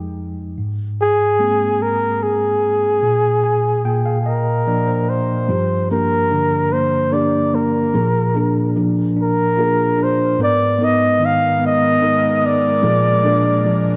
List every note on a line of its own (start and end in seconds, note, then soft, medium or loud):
0.00 0.53 F2 medium
0.00 0.59 F3 soft
0.00 0.60 G#3 soft
0.00 0.60 D#4 soft
0.58 2.99 G#2 medium
1.01 1.84 G#4 medium
1.39 2.19 G#3 soft
1.39 2.19 A#3 soft
1.39 2.19 C4 soft
1.82 2.24 A#4 medium
2.23 4.20 G#4 medium
3.03 3.82 A#2 medium
3.44 3.82 G#5 medium
3.85 5.45 A#2 medium
3.85 4.04 G5 medium
4.06 4.24 F5 medium
4.21 4.30 G#4 soft
4.26 5.11 A#4 medium
4.26 4.64 D#5 medium
4.67 5.47 F3 soft
4.67 5.47 A#3 soft
4.67 5.47 D4 soft
4.67 4.86 D5 medium
4.88 5.45 C5 medium
5.09 5.91 C5 medium
5.48 7.90 G2 medium
5.48 7.92 F3 medium
5.48 5.90 G4 medium
5.90 7.10 A#3 medium
5.90 6.71 A#3 soft
5.90 6.29 D4 soft
5.90 7.11 G4 medium
5.90 6.74 A#4 medium
6.30 7.91 D3 soft
6.30 7.11 D4 medium
6.72 7.52 A#3 soft
6.72 7.14 C5 medium
7.11 8.02 A#3 medium
7.11 8.02 D4 medium
7.11 7.92 D4 medium
7.11 7.94 G4 medium
7.11 7.56 D5 medium
7.54 7.93 A#3 soft
7.54 8.77 A#4 medium
7.94 10.35 A#2 medium
7.94 10.39 F3 medium
7.94 8.35 G#4 medium
8.35 9.57 A#3 medium
8.35 9.15 D4 soft
8.35 8.75 D4 medium
8.35 9.58 G#4 medium
8.76 10.35 F3 soft
8.76 9.57 D4 medium
9.16 9.96 D4 soft
9.22 10.04 A#4 medium
9.57 10.39 A#3 medium
9.57 10.48 D4 medium
9.57 10.36 F4 medium
9.57 10.40 G#4 medium
9.97 10.37 D4 medium
10.03 10.41 C5 medium
10.38 12.78 G#2 medium
10.38 13.96 G#3 medium
10.38 12.80 B3 medium
10.38 10.78 B3 medium
10.38 13.96 A#4 medium
10.38 10.80 A#4 medium
10.43 10.85 D5 loud
10.79 11.58 B3 medium
10.79 12.00 B3 medium
10.79 11.19 D#4 medium
10.79 12.01 A#4 medium
10.84 11.27 D#5 medium
11.20 12.79 D#3 soft
11.20 12.00 D#4 medium
11.25 11.63 F5 loud
11.60 12.41 B3 medium
11.66 12.47 D#5 medium
12.01 12.91 B3 medium
12.01 12.80 D#4 medium
12.01 12.91 D#4 medium
12.01 12.84 A#4 medium
12.42 12.82 B3 medium
12.42 13.96 D5 medium
12.82 13.96 A#2 medium
12.82 13.96 F3 medium
12.82 13.96 D4 medium
12.82 13.24 G#4 medium
13.24 13.96 A#3 medium
13.24 13.96 D4 medium
13.24 13.63 D4 medium
13.24 13.96 G#4 medium
13.65 13.96 F3 medium
13.65 13.96 D4 medium